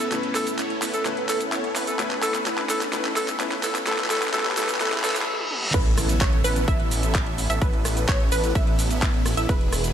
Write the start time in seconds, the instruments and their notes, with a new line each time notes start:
Already playing: grand piano A2 A3 C#4 E4 B4, riser
0.00 shaker
0.10 grand piano A2 A3 C#4 E4 B4, supersaw synth B3 C#4 E4 A4 B4, clap, closed hi-hat, shaker
0.23 closed hi-hat
0.35 alto saxophone A4, clap, open hi-hat, shaker
0.47 closed hi-hat, shaker
0.58 supersaw synth B3 C#4 E4 A4 C#5, clap, closed hi-hat, shaker
0.70 closed hi-hat
0.82 supersaw synth B3 C#4 E4 A4 B4, clap, open hi-hat, shaker
0.94 alto saxophone A4, closed hi-hat, shaker
1.04 grand piano A2 A3 C#4 E4 B4, supersaw synth B3 C#4 E4 A4 B4, clap, closed hi-hat, shaker
1.17 closed hi-hat
1.29 alto saxophone A4, clap, open hi-hat, shaker
1.40 closed hi-hat, shaker
1.52 supersaw synth B3 C#4 E4 A4 C#5, clap, closed hi-hat, shaker
1.64 closed hi-hat
1.76 supersaw synth B3 C#4 E4 A4 B4, clap, open hi-hat, shaker
1.87 alto saxophone A4, closed hi-hat, shaker
1.98 grand piano A2 A3 C#4 E4 B4, supersaw synth B3 C#4 E4 A4 B4, clap, closed hi-hat, shaker
2.11 clap, closed hi-hat
2.23 alto saxophone A4, clap, open hi-hat, shaker
2.34 clap, closed hi-hat, shaker
2.45 grand piano A2 A3 C#4 E4 B4, supersaw synth B3 C#4 E4 A4 B4, clap, closed hi-hat, shaker
2.58 clap, closed hi-hat
2.69 alto saxophone A4, clap, open hi-hat, shaker
2.81 clap, closed hi-hat, shaker
2.92 grand piano A2 A3 C#4 E4 B4, supersaw synth B3 C#4 E4 A4 B4, clap, closed hi-hat, shaker
3.05 clap, closed hi-hat
3.16 alto saxophone A4, clap, open hi-hat, shaker
3.28 clap, closed hi-hat, shaker
3.39 grand piano A2 A3 C#4 E4 B4, supersaw synth B3 C#4 E4 A4 B4, clap, closed hi-hat, shaker
3.52 clap, closed hi-hat
3.63 alto saxophone A4, clap, open hi-hat, shaker
3.75 clap, closed hi-hat, shaker
3.85 grand piano A2 A3 C#4 E4 B4, supersaw synth B3 C#4 E4 A4 B4, alto saxophone A4, clap, closed hi-hat, shaker
3.92 clap
3.98 clap, closed hi-hat
4.04 clap
4.09 grand piano A2 A3 C#4 E4 B4, supersaw synth B3 C#4 E4 A4 B4, alto saxophone A4, clap, open hi-hat, shaker
4.16 clap
4.22 clap, closed hi-hat, shaker
4.28 clap
4.32 grand piano A2 A3 C#4 E4 B4, supersaw synth B3 C#4 E4 A4 B4, alto saxophone A4, clap, closed hi-hat, shaker
4.39 clap
4.45 clap, closed hi-hat
4.51 clap
4.56 grand piano A2 A3 C#4 E4 B4, supersaw synth B3 C#4 E4 A4 B4, alto saxophone A4, clap, open hi-hat, shaker
4.63 clap
4.69 clap, closed hi-hat, shaker
4.75 clap
4.79 grand piano A2 A3 C#4 E4 B4, supersaw synth B3 C#4 E4 A4 B4, alto saxophone A4, clap, closed hi-hat, reverse cymbal, shaker
4.86 clap
4.92 clap, closed hi-hat
4.98 clap
5.03 grand piano A2 A3 C#4 E4 B4, supersaw synth B3 C#4 E4 A4 B4, alto saxophone A4, clap, open hi-hat, shaker
5.10 clap
5.16 clap, closed hi-hat, shaker
5.21 clap
5.39 high tom
5.51 mid tom
5.62 mid tom
5.74 detuned saw bass A1, supersaw synth B3 C#4 E4 A4 B4, synth pluck B4, kick, closed hi-hat, crash, impact, shaker
5.86 closed hi-hat
5.98 cross-stick, open hi-hat, shaker
6.09 closed hi-hat, shaker
6.21 detuned saw bass A1, supersaw synth B3 C#4 E4 A4 C#5, synth pluck C#5, kick, clap, closed hi-hat, shaker
6.33 closed hi-hat
6.44 detuned saw bass A1, supersaw synth B3 C#4 E4 A4 B4, synth pluck B4, open hi-hat, shaker
6.56 closed hi-hat, shaker
6.68 detuned saw bass A1, supersaw synth B3 C#4 E4 A4, synth pluck E5, kick, closed hi-hat, shaker
6.80 closed hi-hat
6.91 open hi-hat, shaker
7.03 closed hi-hat, shaker
7.15 kick, clap, closed hi-hat, shaker
7.27 closed hi-hat
7.38 open hi-hat, shaker
7.50 detuned saw bass A1, supersaw synth B3 C#4 E4 A4 E5, synth pluck E5, closed hi-hat, shaker
7.62 detuned saw bass A1, supersaw synth B3 C#4 E4 A4 B4, synth pluck B4, kick, closed hi-hat, shaker
7.73 closed hi-hat
7.85 cross-stick, open hi-hat, shaker
7.97 closed hi-hat, shaker
8.08 detuned saw bass A1, supersaw synth B3 C#4 E4 A4 C#5, synth pluck C#5, kick, clap, closed hi-hat, shaker
8.20 closed hi-hat
8.32 detuned saw bass A1, supersaw synth B3 C#4 E4 A4 B4, synth pluck B4, open hi-hat, shaker
8.44 closed hi-hat, shaker
8.55 detuned saw bass A1, synth pluck E5, kick, closed hi-hat, shaker
8.67 closed hi-hat
8.79 open hi-hat, shaker
8.91 closed hi-hat, shaker
9.02 kick, clap, closed hi-hat, shaker
9.14 closed hi-hat
9.26 cross-stick, open hi-hat, shaker
9.37 detuned saw bass A1, supersaw synth B3 C#4 E4 A4 E5, synth pluck E5, closed hi-hat, shaker
9.49 detuned saw bass E1, supersaw synth G#3 B3 E4 G#4 B4, synth pluck B4, kick, closed hi-hat, shaker
9.61 closed hi-hat
9.73 cross-stick, open hi-hat, shaker
9.84 closed hi-hat, shaker